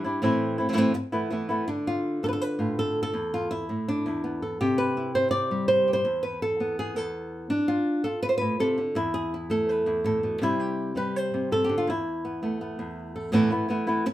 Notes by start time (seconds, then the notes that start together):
0.04 G3 D4 E4
0.22 A2 E3 A3 C4 E4
0.58 A3 C4 E4
0.69 E3 A3 C4 E4
0.73 E3 A3 C4 E4
0.77 A2 E3 A3 C4 E4
0.94 muted nylon-string guitar stroke
1.12 E3 A3 B3 E4
1.30 E3 A3 B3 E4
1.49 E3 A3 B3 E4
1.68 D3 D4
1.87 F4
2.23 D4 A4
2.29 B4
2.33 A4
2.41 B4
2.59 A2 F4
2.79 A4
3.03 A4
3.14 E2
3.34 F4
3.51 E4
3.69 A2
3.88 D4
4.06 E2 E4
4.24 B3
4.42 A4
4.61 C3 G4
4.78 B4
4.97 E4
5.15 C4 C5
5.31 D5
5.51 G3
5.68 C5
5.88 G4
5.93 C5
6.05 E2
6.23 B4
6.42 A4
6.60 B3
6.79 G#4
6.96 E2 A4
7.50 D4
7.68 F4
8.04 F4 A4
8.23 B4
8.29 C5
8.38 A2 B4
8.60 C3 A4
8.78 D3
8.95 E2 E4
9.14 G#4
9.34 E4
9.50 A3 A4
9.69 B4
9.86 E2 E4
10.04 A2 A4
10.23 B2
10.42 C3 G3 C4 E4
10.60 G4
10.96 G3 B4
11.16 C5
11.34 C3
11.52 C3 A4
11.64 G4
11.69 D3
11.78 F4
11.87 E2 E4
12.25 B3
12.43 A3 B3
12.61 B3
12.79 E2
13.16 A4
13.32 E2 A2 E3 A3 B3 E4
13.51 E3 A3 B3 E4
13.69 E3 A3 B3 E4
13.87 E3 A3 B3 E4
14.06 muted nylon-string guitar stroke